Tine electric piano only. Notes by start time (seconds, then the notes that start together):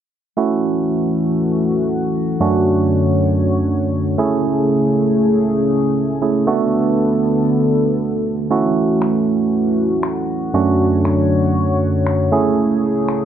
0.37 A3 C#4 E4 F#4
2.40 F#2 A3 C#4 D4 F#4
4.18 A3 C#4 E4 G#4
6.22 A3 C#4 E4 G#4
6.47 A3 B3 D4 F#4
8.50 A3 C#4 E4 F#4
10.54 F#2 A3 C#4 D4 F#4
12.32 A3 C#4 E4 G#4